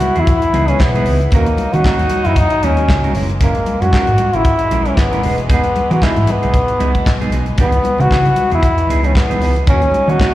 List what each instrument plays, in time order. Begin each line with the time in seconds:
Already playing: french horn section E3 B3 E4, trombone F#4
0.00 muted clean electric guitar stroke, closed hi-hat, muted conga, high conga
0.15 fingered electric bass E2, clean electric guitar E3 B3 D#4 G#4, closed hi-hat, low conga
0.20 trombone E4
0.27 muted clean electric guitar stroke, kick, closed hi-hat, muted conga
0.42 muted clean electric guitar stroke, closed hi-hat
0.52 fingered electric bass C#2, clean electric guitar E3 B3 D#4 G#4, closed hi-hat, muted conga, high conga
0.68 clean electric guitar E3 B3 D#4 G#4, trombone C#4, closed hi-hat, high conga
0.79 fingered electric bass B1, trombone B3, kick, snare, clap, muted conga
0.94 clean electric guitar E3 B3 D#4 G#4, closed hi-hat, high conga
1.06 fingered electric bass C#2, clean electric guitar E3 B3 D#4 G#4, open hi-hat, low conga
1.21 closed hi-hat
1.31 fingered electric bass D#2, french horn section C#3 F#3 D#4, clean electric guitar A#3 C#4 F#4 A#4, trombone A#3, kick, closed hi-hat, muted conga, low conga
1.46 muted clean electric guitar stroke, closed hi-hat
1.57 muted clean electric guitar stroke, closed hi-hat, high conga
1.73 fingered electric bass D#3, clean electric guitar A#3 C#4 F#4 C#5, trombone F#4, closed hi-hat, high conga
1.84 clean electric guitar A#3 C#4 F#4 A#4, kick, snare, clap
1.99 fingered electric bass D#2, muted clean electric guitar stroke, closed hi-hat
2.10 muted clean electric guitar stroke, closed hi-hat, muted conga, high conga
2.25 fingered electric bass F#2, clean electric guitar A#3 C#4 F#4 A#4, trombone E4, closed hi-hat, low conga
2.36 trombone D#4, muted clean electric guitar stroke, kick, closed hi-hat
2.50 muted clean electric guitar stroke, closed hi-hat
2.62 fingered electric bass D#2, clean electric guitar A#3 C#4 F#4 A#4, trombone C#4, closed hi-hat, high conga
2.77 clean electric guitar A#3 C#4 F#4 A#4, closed hi-hat, high conga
2.88 fingered electric bass C#2, muted clean electric guitar stroke, kick, snare, clap
3.04 clean electric guitar A#3 C#4 F#4 A#4, closed hi-hat, high conga
3.14 fingered electric bass F#1, french horn section A#2 E3 G#3, clean electric guitar G#3 C#4 E4 A#4, open hi-hat, low conga
3.30 muted clean electric guitar stroke, closed hi-hat
3.40 clean electric guitar G#3 C#4 E4 A#4, trombone A#3, kick, closed hi-hat, muted conga, low conga
3.55 muted clean electric guitar stroke, closed hi-hat
3.66 muted clean electric guitar stroke, closed hi-hat, muted conga, high conga
3.82 fingered electric bass F#2, clean electric guitar G#3 C#4 E4 C#5, trombone F#4, closed hi-hat, high conga
3.92 clean electric guitar G#3 C#4 E4 A#4, kick, snare, clap, muted conga
4.07 fingered electric bass G#2, muted clean electric guitar stroke, closed hi-hat
4.18 muted clean electric guitar stroke, closed hi-hat, muted conga, high conga
4.33 fingered electric bass G#1, clean electric guitar G#3 C#4 E4 A#4, trombone E4, closed hi-hat, low conga
4.45 kick, closed hi-hat, muted conga
4.59 muted clean electric guitar stroke, closed hi-hat
4.71 fingered electric bass A#1, clean electric guitar G#3 C#4 E4 A#4, closed hi-hat, high conga
4.85 clean electric guitar G#3 C#4 E4 A#4, trombone C#4, closed hi-hat, high conga
4.97 fingered electric bass G#1, trombone B3, kick, snare, clap
5.12 clean electric guitar G#3 C#4 E4 A#4, closed hi-hat, high conga
5.23 fingered electric bass E1, french horn section B2, clean electric guitar G#3 B3 D#4 G#4, open hi-hat, muted conga, low conga
5.38 muted clean electric guitar stroke, closed hi-hat
5.49 clean electric guitar G#3 B3 D#4 G#4, trombone B3, kick, closed hi-hat, low conga
5.64 muted clean electric guitar stroke, closed hi-hat
5.76 muted clean electric guitar stroke, closed hi-hat, muted conga, high conga
5.90 fingered electric bass E3, clean electric guitar G#3 B3 D#4 A#4, trombone F#4, closed hi-hat, high conga
6.02 clean electric guitar G#3 B3 D#4 G#4, trombone E4, kick, snare, clap, muted conga
6.16 fingered electric bass G#2, muted clean electric guitar stroke, closed hi-hat
6.27 muted clean electric guitar stroke, closed hi-hat, high conga
6.32 trombone B3
6.42 fingered electric bass B1, clean electric guitar G#3 B3 D#4 G#4, closed hi-hat, low conga
6.54 kick, closed hi-hat, muted conga
6.68 muted clean electric guitar stroke, closed hi-hat
6.79 fingered electric bass C#2, clean electric guitar G#3 B3 D#4 G#4, closed hi-hat, muted conga, high conga
6.94 muted clean electric guitar stroke, kick, closed hi-hat, high conga
7.05 fingered electric bass B1, muted clean electric guitar stroke, kick, snare, clap, muted conga
7.20 clean electric guitar G#3 B3 D#4 G#4, closed hi-hat, high conga
7.31 fingered electric bass B1, clean electric guitar G#3 B3 D#4 G#4, closed hi-hat, low conga
7.46 muted clean electric guitar stroke, closed hi-hat
7.58 fingered electric bass C#2, clean electric guitar E3 B3 D#4 G#4, french horn section B3, trombone B3, kick, closed hi-hat, muted conga, low conga
7.72 muted clean electric guitar stroke, closed hi-hat
7.84 muted clean electric guitar stroke, closed hi-hat, muted conga, high conga
7.99 fingered electric bass C#3, clean electric guitar E3 B3 D#4 A#4, trombone F#4, closed hi-hat, high conga
8.11 fingered electric bass C#3, clean electric guitar E3 B3 D#4 G#4, kick, snare, clap
8.25 muted clean electric guitar stroke, closed hi-hat
8.36 muted clean electric guitar stroke, closed hi-hat, muted conga, high conga
8.50 fingered electric bass E2, clean electric guitar E3 B3 D#4 G#4, closed hi-hat, low conga
8.55 trombone E4
8.61 muted clean electric guitar stroke, kick, closed hi-hat, muted conga
8.78 muted clean electric guitar stroke, closed hi-hat
8.87 fingered electric bass C#2, clean electric guitar E3 B3 D#4 G#4, closed hi-hat, high conga
9.03 clean electric guitar E3 B3 D#4 G#4, trombone C#4, closed hi-hat, high conga
9.15 fingered electric bass B1, trombone B3, kick, snare, clap
9.29 clean electric guitar E3 B3 D#4 G#4, closed hi-hat, high conga
9.41 fingered electric bass C#2, clean electric guitar E3 B3 D#4 G#4, snare, open hi-hat, muted conga, low conga
9.56 muted clean electric guitar stroke, closed hi-hat
9.66 fingered electric bass D#2, french horn section C#3 F#3 D#4, clean electric guitar A#3 C#4 F#4 A#4, trombone C#4, kick, closed hi-hat, low conga
9.82 muted clean electric guitar stroke, closed hi-hat
9.91 muted clean electric guitar stroke, closed hi-hat, high conga
10.07 fingered electric bass D#3, clean electric guitar A#3 C#4 F#4 C#5, trombone F#4, closed hi-hat, high conga
10.20 clean electric guitar A#3 C#4 F#4 A#4, kick, snare, clap